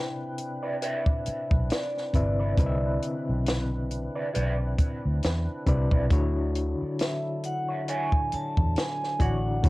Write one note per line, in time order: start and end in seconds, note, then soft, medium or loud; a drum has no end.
0.00 0.11 C3 medium
0.00 0.12 C4 medium
0.00 6.08 C4 medium
0.00 6.08 D4 medium
0.00 0.15 E4 medium
0.00 9.69 E4 medium
0.00 0.12 B4 medium
0.00 6.07 B4 medium
0.00 0.12 D5 medium
0.00 0.86 G5 medium
0.38 closed hi-hat medium
0.63 0.76 E4 medium
0.63 0.75 B4 medium
0.63 0.75 D5 medium
0.82 1.03 E4 medium
0.82 1.03 B4 medium
0.82 1.04 D5 medium
0.82 1.73 E5 loud
0.82 closed hi-hat medium
1.06 kick medium
1.26 muted fingered electric bass stroke soft
1.26 closed hi-hat medium
1.51 1.68 B1 medium
1.51 kick loud
1.70 2.14 D5 medium
1.70 snare loud
1.70 closed hi-hat medium
1.98 snare soft
2.13 2.54 G1 medium
2.13 2.52 C3 medium
2.13 2.52 C4 medium
2.13 2.52 E4 medium
2.13 2.52 B4 medium
2.13 2.99 D5 medium
2.13 2.53 E5 medium
2.13 kick medium
2.13 closed hi-hat medium
2.39 2.53 E4 soft
2.39 2.52 B4 medium
2.39 2.52 D5 soft
2.57 2.98 C2 loud
2.57 4.08 D3 medium
2.57 4.09 C4 medium
2.57 4.09 E4 medium
2.57 4.09 B4 medium
2.57 2.66 D#5 medium
2.57 kick loud
2.57 closed hi-hat loud
2.66 4.13 E5 medium
3.02 closed hi-hat medium
3.29 4.07 B1 medium
3.46 snare loud
3.46 closed hi-hat medium
3.91 closed hi-hat medium
4.16 4.29 E4 soft
4.16 4.28 B4 medium
4.16 4.28 D5 medium
4.34 4.75 B1 medium
4.34 4.55 E4 medium
4.34 4.56 B4 loud
4.34 4.56 D5 loud
4.34 closed hi-hat medium
4.78 muted fingered electric bass stroke soft
4.78 kick loud
4.78 closed hi-hat medium
5.05 5.21 D2 medium
5.23 5.46 E2 medium
5.23 snare medium
5.23 closed hi-hat medium
5.66 5.90 C2 medium
5.66 6.05 C3 medium
5.66 6.05 C4 medium
5.66 6.05 E4 medium
5.66 6.05 B4 medium
5.66 6.06 D5 medium
5.66 kick medium
5.66 closed hi-hat medium
5.91 6.09 B1 medium
5.91 6.05 E4 soft
5.91 6.05 B4 soft
5.91 6.04 D5 medium
5.91 kick medium
6.11 6.73 D2 loud
6.11 7.62 D3 medium
6.11 9.69 D3 medium
6.11 9.69 F#3 medium
6.11 9.69 D4 medium
6.11 7.62 D4 medium
6.11 7.62 E4 medium
6.11 7.62 F#4 medium
6.11 7.63 C#5 medium
6.11 kick loud
6.11 closed hi-hat medium
6.55 closed hi-hat medium
6.82 muted fingered electric bass stroke soft
6.99 7.45 E5 medium
6.99 snare loud
6.99 closed hi-hat medium
7.44 7.90 F#5 loud
7.44 closed hi-hat medium
7.68 7.82 E4 soft
7.68 7.82 F#4 medium
7.68 7.81 C#5 medium
7.88 8.09 E4 medium
7.88 8.09 F#4 loud
7.88 8.10 C#5 loud
7.88 8.34 G#5 loud
7.88 closed hi-hat medium
8.12 kick medium
8.32 8.74 A5 loud
8.32 muted fingered electric bass stroke soft
8.32 closed hi-hat medium
8.57 8.74 E2 medium
8.57 kick medium
8.76 9.22 G#5 loud
8.76 snare loud
8.76 closed hi-hat medium
9.04 snare soft
9.19 9.60 A1 medium
9.19 9.58 D3 medium
9.19 9.58 D4 medium
9.19 9.37 E4 medium
9.19 9.58 E4 medium
9.19 9.58 F#4 medium
9.19 9.37 F#4 medium
9.19 9.37 C#5 medium
9.19 9.59 D5 medium
9.19 9.69 F#5 loud
9.19 kick medium
9.19 closed hi-hat medium
9.63 9.69 D2 loud
9.63 9.69 D3 medium
9.63 9.69 D4 medium
9.63 9.69 E4 medium
9.63 9.69 F#4 medium
9.63 9.69 C#5 medium
9.63 kick loud
9.63 closed hi-hat medium